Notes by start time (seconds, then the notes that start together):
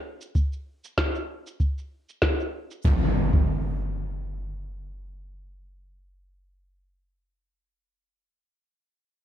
0.21 shaker
0.35 kick, shaker
0.53 shaker
0.84 shaker
0.98 kick, snare, shaker
1.15 shaker
1.47 shaker
1.60 kick, shaker
1.78 shaker
2.09 shaker
2.22 kick, snare, shaker
2.40 shaker
2.71 shaker
2.85 kick, impact
3.33 kick